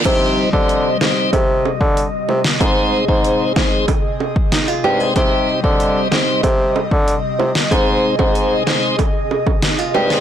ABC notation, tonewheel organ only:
X:1
M:4/4
L:1/16
Q:1/4=94
K:Cm
V:1 name="Tonewheel organ"
[G,CEc]3 [G,Cce]3 [G,CEc]2 z8 | [A,CEc]3 [A,CEc]3 [A,CEc]2 z6 [A,CEc]2 | [G,CEc]3 [G,Cce]3 [G,CEc]2 z8 | [A,CEc]3 [A,CEc]3 [A,CEc]2 z6 [A,CEc]2 |]